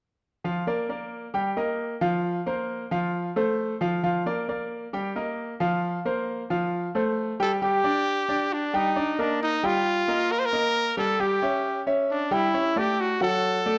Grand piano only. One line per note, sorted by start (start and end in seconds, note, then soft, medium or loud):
0.44 0.63 F3 medium
0.44 0.63 F4 medium
0.44 0.63 F5 medium
0.67 0.85 A#3 medium
0.67 0.86 A#4 medium
0.67 0.86 D5 medium
0.89 1.26 A#3 medium
0.89 1.26 A#4 medium
0.89 1.26 D5 medium
1.34 1.52 G3 medium
1.34 1.53 G4 medium
1.34 1.53 G5 medium
1.57 1.93 A#3 medium
1.57 1.94 A#4 medium
1.57 1.94 D#5 medium
2.01 2.38 F3 medium
2.01 2.38 F4 medium
2.01 2.38 F5 medium
2.46 2.83 A#3 medium
2.46 2.83 A#4 medium
2.46 2.83 C5 medium
2.91 3.28 F3 medium
2.91 3.28 F4 medium
2.91 3.28 F5 medium
3.36 3.73 A3 medium
3.36 3.73 A4 medium
3.36 3.73 C5 medium
3.81 3.99 F3 medium
3.81 4.00 F4 medium
3.81 4.00 F5 medium
4.03 4.22 F3 medium
4.03 4.22 F4 medium
4.03 4.22 F5 medium
4.26 4.44 A#3 medium
4.26 4.44 A#4 medium
4.26 4.45 D5 medium
4.49 4.85 A#3 medium
4.49 4.85 A#4 medium
4.49 4.85 D5 medium
4.93 5.11 G3 medium
4.93 5.12 G4 medium
4.93 5.12 G5 medium
5.16 5.52 A#3 medium
5.16 5.52 A#4 medium
5.16 5.53 D#5 medium
5.60 5.97 F3 medium
5.60 5.97 F4 medium
5.60 5.97 F5 medium
6.05 6.42 A#3 medium
6.05 6.42 A#4 medium
6.05 6.42 C5 medium
6.50 6.87 F3 medium
6.50 6.87 F4 medium
6.50 6.87 F5 medium
6.95 7.31 A3 medium
6.95 7.32 A4 medium
6.95 7.32 C5 medium
7.40 7.58 G3 medium
7.40 7.58 G4 medium
7.40 7.58 G5 medium
7.62 7.80 G3 medium
7.62 7.80 G4 medium
7.62 7.80 G5 medium
7.84 8.21 D4 medium
7.84 8.21 D5 medium
8.29 8.65 D4 medium
8.29 8.66 D5 medium
8.74 8.92 G3 medium
8.74 8.92 G4 medium
8.74 8.92 G5 medium
8.96 9.14 D4 medium
8.96 9.15 D5 medium
9.19 9.55 A#3 medium
9.19 9.55 A#4 medium
9.19 9.55 D#5 medium
9.63 10.00 G3 medium
9.63 10.00 G4 medium
9.63 10.00 G5 medium
10.08 10.45 A#3 medium
10.08 10.45 A#4 medium
10.08 10.45 D#5 medium
10.53 10.89 A#3 medium
10.53 10.89 A#4 medium
10.53 10.90 D#5 medium
10.97 11.15 G3 medium
10.97 11.16 G4 medium
10.97 11.16 G5 medium
11.20 11.38 G3 medium
11.20 11.38 G4 medium
11.20 11.38 G5 medium
11.42 11.79 C#4 medium
11.42 11.79 C#5 medium
11.42 11.79 E5 medium
11.87 12.23 C#4 medium
11.87 12.24 C#5 medium
11.87 12.24 E5 medium
12.31 12.50 G3 medium
12.31 12.50 G4 medium
12.31 12.50 G5 medium
12.54 12.72 C#4 medium
12.54 12.72 C#5 medium
12.54 12.73 E5 medium
12.76 13.13 A3 medium
12.76 13.13 A4 medium
12.76 13.13 D5 medium
13.21 13.57 F#3 medium
13.21 13.58 F#4 medium
13.21 13.58 F#5 medium
13.66 13.78 A3 medium
13.66 13.78 A4 medium
13.66 13.78 D5 medium